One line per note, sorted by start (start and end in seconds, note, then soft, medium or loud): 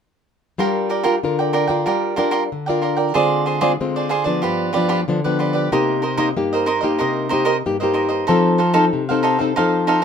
0.58 1.20 G3 medium
0.58 1.02 D4 medium
0.58 0.88 F4 medium
0.58 1.02 F4 medium
0.58 1.02 A#4 medium
0.58 0.89 A#4 medium
0.58 0.89 D5 medium
0.58 0.90 G5 medium
0.89 1.02 F4 soft
0.89 1.03 A#4 soft
0.89 1.03 D5 soft
0.89 1.03 G5 soft
1.03 1.17 D4 soft
1.03 1.14 F4 medium
1.03 1.17 F4 medium
1.03 1.15 A#4 medium
1.03 1.18 A#4 soft
1.03 1.15 D5 medium
1.03 1.15 G5 medium
1.23 1.84 D3 medium
1.23 1.66 D4 soft
1.23 1.67 F4 soft
1.23 1.67 A#4 medium
1.39 1.52 A#4 soft
1.39 1.52 D5 soft
1.39 1.53 G5 soft
1.53 1.69 F4 medium
1.53 1.68 A#4 medium
1.53 1.67 D5 medium
1.53 1.66 G5 medium
1.67 2.13 D4 soft
1.67 2.14 F4 medium
1.67 1.85 A#4 soft
1.67 2.14 A#4 medium
1.67 1.85 D5 soft
1.67 1.84 G5 soft
1.86 2.48 G3 medium
1.86 2.15 F4 medium
1.86 2.16 A#4 medium
1.86 2.16 D5 medium
1.86 2.17 G5 medium
2.16 2.49 D4 medium
2.16 2.30 F4 medium
2.16 2.49 F4 medium
2.16 2.30 A#4 medium
2.16 2.49 A#4 soft
2.16 2.30 D5 medium
2.16 2.31 G5 medium
2.31 2.42 F4 medium
2.31 2.42 A#4 medium
2.31 2.43 D5 medium
2.31 2.43 G5 medium
2.52 3.13 D3 medium
2.66 3.11 D4 soft
2.66 3.11 F4 soft
2.66 2.81 A#4 soft
2.66 3.12 A#4 soft
2.66 2.82 D5 soft
2.66 2.82 G5 soft
2.82 2.97 F4 soft
2.82 2.96 A#4 soft
2.82 2.96 D5 soft
2.82 2.95 G5 soft
2.96 3.13 A#4 soft
2.96 3.13 D5 soft
2.96 3.13 G5 soft
3.14 3.77 D3 medium
3.14 3.59 G#3 medium
3.14 3.59 C4 medium
3.14 3.45 F4 medium
3.14 3.59 F4 soft
3.14 3.45 G#4 medium
3.14 3.46 C5 medium
3.14 3.46 D5 medium
3.46 3.60 F4 soft
3.46 3.60 G#4 soft
3.46 3.60 C5 soft
3.46 3.60 D5 soft
3.61 3.74 G#3 medium
3.61 3.74 C4 medium
3.61 3.71 F4 medium
3.61 3.74 F4 soft
3.61 3.71 G#4 medium
3.61 3.71 C5 medium
3.61 3.72 D5 medium
3.81 4.41 D3 medium
3.81 4.10 G#3 soft
3.81 4.10 C4 medium
3.81 4.11 F4 medium
3.96 4.09 G#4 soft
3.96 4.09 C5 soft
3.96 4.10 D5 soft
4.09 4.25 F4 medium
4.09 4.25 G#4 medium
4.09 4.24 C5 medium
4.09 4.23 D5 medium
4.24 4.70 F3 soft
4.24 4.70 B3 medium
4.24 4.70 D4 medium
4.24 4.42 G#4 soft
4.24 4.41 C5 soft
4.24 4.41 D5 soft
4.42 5.05 G2 medium
4.42 4.72 F4 medium
4.42 4.72 G4 medium
4.42 4.73 B4 medium
4.42 4.73 D5 medium
4.73 5.03 F3 medium
4.73 5.03 B3 medium
4.73 4.87 F4 medium
4.73 4.88 G4 medium
4.73 4.88 B4 medium
4.73 4.88 D5 medium
4.77 5.03 D4 medium
4.89 4.99 F4 medium
4.89 5.00 G4 medium
4.89 5.00 B4 medium
4.89 5.00 D5 medium
5.08 5.69 D3 medium
5.08 5.19 F3 soft
5.08 5.19 B3 soft
5.08 5.20 D4 medium
5.24 5.68 F3 soft
5.24 5.68 B3 soft
5.24 5.68 D4 medium
5.24 5.39 G4 soft
5.24 5.39 B4 soft
5.24 5.39 D5 soft
5.39 5.54 F4 soft
5.39 5.54 G4 soft
5.39 5.53 B4 soft
5.39 5.52 D5 soft
5.53 5.70 G4 soft
5.53 5.70 B4 soft
5.53 5.69 D5 soft
5.72 6.33 C3 medium
5.72 6.02 A#3 medium
5.72 6.01 D#4 medium
5.72 6.03 D#4 medium
5.72 6.03 G4 medium
5.72 6.01 A#4 medium
5.72 6.02 C5 medium
5.72 6.03 D#5 medium
6.02 6.16 D#4 medium
6.02 6.16 A#4 soft
6.02 6.17 C5 soft
6.02 6.17 D#5 soft
6.17 6.30 A#3 medium
6.17 6.28 D#4 medium
6.17 6.30 D#4 medium
6.17 6.31 G4 medium
6.17 6.28 A#4 medium
6.17 6.28 C5 medium
6.17 6.28 D#5 medium
6.37 6.97 G2 medium
6.37 6.66 A#3 medium
6.37 6.67 D#4 soft
6.37 6.67 G4 soft
6.53 6.65 A#4 soft
6.53 6.66 C5 soft
6.53 6.66 D#5 soft
6.66 6.82 D#4 medium
6.66 6.81 A#4 medium
6.66 6.81 C5 medium
6.66 6.80 D#5 medium
6.81 7.27 A#3 medium
6.81 7.27 D#4 medium
6.81 7.27 G4 medium
6.81 6.98 A#4 soft
6.81 6.98 C5 soft
6.81 6.97 D#5 soft
6.99 7.62 C3 medium
6.99 7.28 D#4 medium
6.99 7.29 A#4 medium
6.99 7.29 C5 medium
6.99 7.30 D#5 medium
7.29 7.51 A#3 medium
7.29 7.44 D#4 medium
7.29 7.51 D#4 medium
7.29 7.52 G4 medium
7.29 7.44 A#4 medium
7.29 7.44 C5 medium
7.29 7.45 D#5 medium
7.45 7.56 D#4 medium
7.45 7.56 A#4 medium
7.45 7.56 C5 medium
7.45 7.56 D#5 medium
7.66 8.26 G2 medium
7.66 7.76 A#3 soft
7.66 7.76 D#4 soft
7.66 7.76 G4 soft
7.80 8.25 A#3 soft
7.80 8.25 D#4 soft
7.80 8.25 G4 medium
7.80 7.93 A#4 soft
7.80 7.93 C5 soft
7.80 7.93 D#5 soft
7.94 8.10 D#4 soft
7.94 8.09 A#4 soft
7.94 8.08 C5 soft
7.94 8.07 D#5 soft
8.09 8.26 A#4 soft
8.09 8.26 C5 soft
8.09 8.25 D#5 soft
8.27 8.90 F3 medium
8.27 8.59 C4 medium
8.27 8.57 D#4 medium
8.27 8.59 D#4 soft
8.27 8.58 A4 medium
8.27 8.59 A4 medium
8.27 8.58 C5 medium
8.27 8.59 F5 medium
8.58 8.72 D#4 soft
8.58 8.73 A4 soft
8.58 8.73 C5 medium
8.58 8.73 F5 medium
8.74 9.03 C4 medium
8.74 8.84 D#4 medium
8.74 9.03 D#4 medium
8.74 8.84 A4 medium
8.74 9.03 A4 medium
8.74 8.84 C5 medium
8.74 8.84 F5 medium
8.93 9.54 C3 medium
9.09 9.37 C4 medium
9.09 9.37 D#4 medium
9.09 9.22 A4 soft
9.09 9.37 A4 medium
9.09 9.23 C5 soft
9.09 9.23 F5 soft
9.23 9.38 D#4 medium
9.23 9.39 A4 medium
9.23 9.38 C5 medium
9.23 9.37 F5 medium
9.39 9.51 C4 soft
9.39 9.52 D#4 soft
9.39 9.55 A4 soft
9.39 9.52 A4 medium
9.39 9.55 C5 soft
9.39 9.54 F5 soft
9.56 10.04 F3 medium
9.56 10.00 C4 soft
9.56 9.86 D#4 medium
9.56 10.01 D#4 soft
9.56 9.86 A4 medium
9.56 10.01 A4 medium
9.56 9.87 C5 medium
9.56 9.88 F5 medium
9.87 10.01 D#4 medium
9.87 10.01 A4 medium
9.87 10.02 C5 medium
9.87 10.02 F5 medium